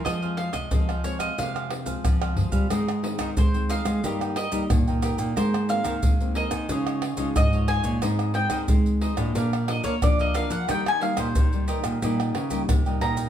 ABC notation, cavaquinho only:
X:1
M:4/4
L:1/16
Q:1/4=90
K:Fm
V:1 name="Cavaquinho"
[FAcf] [Acf] [FAcf] z [FAcf] [Acf]2 [Acf] [FAcf] [Acf] z [Acf]2 [Acf] [FAcf] [Acf] | [K:Ab] [EAce]2 [EAce] [EAce] z2 [EAce] [Ace] [GBeg] [Beg] [GBeg] [GBeg] z [Beg] [GBeg] [Beg] | [Bca]2 [Bca] [Bca] z2 [Bca] [ca] [FAde] [Ade] [FAde] [FAde] z [Ade] [FAde] [Ade] | [EAce]2 [EAce] [EAce] z2 [EAce] [Ace] [=DB=df] [Bdf] [DBdf] [DBdf] z [Bdf] [DBdf] [Bdf] |
[GBeg]2 [GBeg] [GBeg] z2 [GBeg] [Beg] [GBeg] [Beg] [GBeg] [GBeg] z [Beg] [GBeg] [Beg] |]